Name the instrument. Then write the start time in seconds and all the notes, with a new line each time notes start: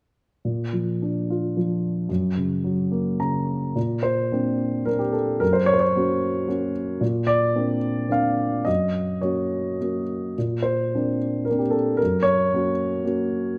grand piano
0.45 A#2
0.73 F3
1.02 D4
1.30 F4
1.57 F3
2.09 F#2
2.37 C#3
2.64 F#3
2.91 A#3
3.20 C#3 A#5
3.76 A#2
4.03 C5
4.32 A#3 C4 D4
4.85 A#3 C4 D4 A#4
4.99 G4
5.13 A4
5.40 F#2 A#4
5.53 C5
5.66 C#5
5.74 C5
5.80 C#5
5.95 A#3 C#4 F#4
6.48 A#3 C#4 F#4
7.01 A#2
7.27 D5
7.56 A#3 C4 D4
8.09 A#3 C4 D4 F5
8.65 F#2 D#5
9.21 A#3 C#4 F#4 C#5
9.80 A#3 C#4 F#4
10.38 A#2
10.63 C5
10.95 A#3 C4 D4
11.45 A#4
11.49 A#3 C4 D4
11.59 G4
11.71 A4
11.97 A#4
12.03 F#2
12.23 C#5
12.53 A#3 C#4 F#4
13.04 A#3 C#4 F#4